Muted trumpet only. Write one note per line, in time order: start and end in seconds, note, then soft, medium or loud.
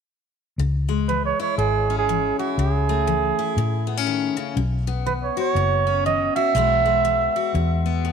1.08 1.24 B4 medium
1.25 1.41 C#5 medium
1.41 1.57 C#5 medium
1.58 1.95 G#4 medium
1.99 2.35 G#4 medium
2.39 2.59 F#4 medium
2.58 4.07 G#4 medium
5.06 5.14 B4 medium
5.24 5.39 C#5 medium
5.40 6.02 C#5 medium
6.06 6.33 D#5 medium
6.36 8.00 E5 loud